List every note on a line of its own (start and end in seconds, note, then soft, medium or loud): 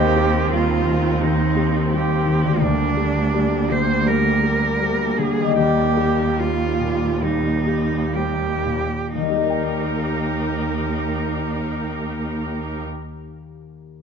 0.00 1.18 D#2 soft
0.00 2.58 D#2 medium
0.00 2.56 D#3 soft
0.00 2.59 D#3 soft
0.00 2.58 C4 soft
0.00 0.52 G4 medium
0.00 2.63 C5 soft
0.00 0.78 G5 soft
0.16 0.73 G4 soft
0.52 1.08 G3 soft
0.52 1.24 F4 medium
0.86 1.42 D#3 soft
1.21 2.58 D#2 soft
1.21 1.92 D#4 medium
1.56 2.12 G4 soft
1.92 2.48 G3 soft
1.92 2.64 G4 medium
2.26 2.61 D#3 soft
2.44 5.52 D3 soft
2.48 6.38 A#3 soft
2.53 6.43 G5 soft
2.57 5.52 A#4 soft
2.61 4.02 D2 soft
2.61 5.54 D2 soft
2.61 8.83 G3 soft
2.61 8.84 A#3 soft
2.61 3.73 D4 medium
2.97 3.56 G4 soft
3.34 3.92 G3 soft
3.71 4.29 D3 soft
3.71 4.09 C5 medium
4.06 4.66 G3 soft
4.06 5.20 A#4 medium
4.44 5.04 G4 soft
4.81 5.42 G3 soft
5.19 5.58 D3 soft
5.19 5.57 G#4 medium
5.39 9.10 D#3 soft
5.44 9.20 G3 soft
5.49 9.34 G4 soft
5.53 9.41 A#4 soft
5.57 7.19 D#2 soft
5.57 8.83 D#2 soft
5.57 6.40 G4 medium
5.97 6.63 G4 soft
6.39 7.06 G3 soft
6.39 7.25 F4 medium
6.80 7.50 A#2 soft
7.23 7.96 G3 soft
7.23 8.17 D#4 medium
7.67 8.44 G4 soft
8.15 8.95 G3 soft
8.15 9.15 G4 medium
8.66 9.15 A#2 soft
9.14 12.83 D#2 soft
9.14 13.04 D#3 soft
9.14 12.83 D#4 soft
9.14 12.83 G4 soft
9.14 12.83 A#4 soft
9.22 12.90 D#3 soft
9.22 12.90 G3 soft
9.28 12.98 G3 soft
9.28 12.96 D#4 soft
9.35 13.03 G4 soft
9.35 13.04 G4 soft
9.43 13.11 A#4 soft
9.50 13.18 G5 soft